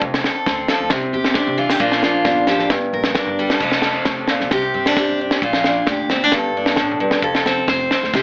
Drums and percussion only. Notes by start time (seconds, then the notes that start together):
0.02 kick
0.14 snare
0.24 snare
0.46 kick, snare
0.68 snare
0.90 kick, snare
1.25 snare
1.34 kick, snare
1.70 snare
1.80 kick
1.92 snare
2.03 snare
2.25 kick, snare
2.47 snare
2.59 snare
2.70 kick, snare
3.04 snare
3.15 kick, snare
3.50 snare
3.60 kick, crash
3.72 snare
3.82 snare
4.05 kick, snare
4.28 snare
4.40 snare
4.51 kick, snare
4.86 snare
4.97 kick, snare
5.31 snare
5.42 kick
5.53 snare
5.64 snare
5.87 kick, snare
6.10 snare
6.32 kick, snare
6.66 snare
6.76 kick, snare
7.11 snare
7.22 kick
7.35 snare
7.46 snare
7.68 kick, snare
7.91 snare
8.04 snare
8.14 kick, snare